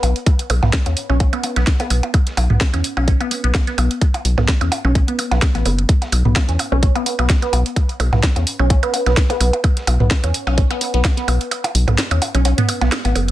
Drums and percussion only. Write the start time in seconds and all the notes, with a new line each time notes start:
0.03 closed hi-hat, open hi-hat, percussion blips
0.16 closed hi-hat
0.26 kick, closed hi-hat, percussion blips
0.39 closed hi-hat
0.50 closed hi-hat, open hi-hat, percussion blips
0.63 snare, mid tom, percussion blips
0.73 kick, snare, closed hi-hat, percussion blips
0.86 closed hi-hat, percussion blips
0.97 closed hi-hat, open hi-hat
1.10 percussion blips
1.20 kick, closed hi-hat, percussion blips
1.33 closed hi-hat, percussion blips
1.43 closed hi-hat, open hi-hat, percussion blips
1.56 snare, closed hi-hat, percussion blips
1.67 kick, snare, closed hi-hat
1.80 closed hi-hat, percussion blips
1.90 closed hi-hat, open hi-hat, percussion blips
2.03 closed hi-hat, percussion blips
2.14 kick, closed hi-hat, percussion blips
2.27 snare, closed hi-hat
2.37 closed hi-hat, open hi-hat, percussion blips
2.50 mid tom
2.61 kick, snare, closed hi-hat, percussion blips
2.74 closed hi-hat, percussion blips
2.84 closed hi-hat, open hi-hat
2.97 percussion blips
3.08 kick, closed hi-hat, percussion blips
3.21 closed hi-hat, percussion blips
3.31 closed hi-hat, open hi-hat
3.44 closed hi-hat
3.55 kick, snare, closed hi-hat, percussion blips
3.67 closed hi-hat
3.78 closed hi-hat, open hi-hat, percussion blips
3.91 closed hi-hat
4.01 kick, closed hi-hat, percussion blips
4.14 closed hi-hat, percussion blips
4.25 closed hi-hat, open hi-hat
4.38 snare, mid tom, percussion blips
4.48 kick, snare, closed hi-hat
4.61 closed hi-hat, percussion blips
4.72 closed hi-hat, open hi-hat, percussion blips
4.85 percussion blips
4.95 kick, closed hi-hat, percussion blips
5.08 closed hi-hat
5.19 closed hi-hat, open hi-hat, percussion blips
5.31 snare, closed hi-hat, percussion blips
5.42 kick, snare, closed hi-hat, percussion blips
5.55 closed hi-hat, percussion blips
5.65 closed hi-hat, open hi-hat, percussion blips
5.79 closed hi-hat
5.89 kick, closed hi-hat
6.02 snare, closed hi-hat, percussion blips
6.12 closed hi-hat, open hi-hat, percussion blips
6.25 mid tom
6.36 kick, snare, closed hi-hat, percussion blips
6.49 closed hi-hat
6.59 closed hi-hat, open hi-hat, percussion blips
6.72 percussion blips
6.83 kick, closed hi-hat
6.95 closed hi-hat, percussion blips
7.06 closed hi-hat, open hi-hat
7.19 closed hi-hat, percussion blips
7.30 kick, snare, closed hi-hat
7.42 closed hi-hat, percussion blips
7.53 closed hi-hat, open hi-hat, percussion blips
7.66 closed hi-hat
7.76 kick, closed hi-hat, percussion blips
7.89 closed hi-hat
8.00 closed hi-hat, open hi-hat, percussion blips
8.13 snare, mid tom, percussion blips
8.23 kick, snare, closed hi-hat, percussion blips
8.36 closed hi-hat, percussion blips
8.47 closed hi-hat, open hi-hat
8.59 percussion blips
8.70 kick, closed hi-hat, percussion blips
8.83 closed hi-hat, percussion blips
8.94 closed hi-hat, open hi-hat, percussion blips
9.06 snare, closed hi-hat, percussion blips
9.17 kick, snare, closed hi-hat
9.30 closed hi-hat, percussion blips
9.40 closed hi-hat, open hi-hat, percussion blips
9.53 closed hi-hat, percussion blips
9.64 kick, closed hi-hat, percussion blips
9.77 snare, closed hi-hat
9.87 closed hi-hat, open hi-hat, percussion blips
10.00 mid tom
10.11 kick, snare, closed hi-hat, percussion blips
10.24 closed hi-hat, percussion blips
10.34 closed hi-hat, open hi-hat
10.47 percussion blips
10.58 kick, closed hi-hat, percussion blips
10.71 closed hi-hat, percussion blips
10.81 closed hi-hat, open hi-hat
10.94 closed hi-hat
11.04 kick, snare, closed hi-hat, percussion blips
11.17 closed hi-hat
11.28 closed hi-hat, open hi-hat, percussion blips
11.41 closed hi-hat
11.51 closed hi-hat, percussion blips
11.64 closed hi-hat, percussion blips
11.75 closed hi-hat, open hi-hat
11.88 closed hi-hat, mid tom, percussion blips
11.98 snare, closed hi-hat
12.11 closed hi-hat, percussion blips
12.22 closed hi-hat, open hi-hat, percussion blips
12.35 closed hi-hat, percussion blips
12.45 closed hi-hat, percussion blips
12.58 closed hi-hat, mid tom
12.68 closed hi-hat, open hi-hat, percussion blips
12.81 snare, closed hi-hat, percussion blips
12.92 snare, closed hi-hat, percussion blips
13.05 closed hi-hat, percussion blips
13.15 closed hi-hat, open hi-hat, percussion blips
13.28 closed hi-hat